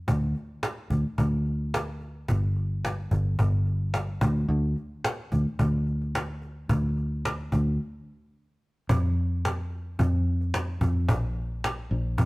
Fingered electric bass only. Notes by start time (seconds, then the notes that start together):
0.08 D2
0.90 D2
1.18 D2
2.29 G1
3.11 G1
3.39 G1
4.21 D2
4.49 D2
5.32 D2
5.59 D2
6.69 D2
7.52 D2
8.90 F2
9.99 F2
10.81 F2
11.09 A#1
11.91 A#1
12.18 F2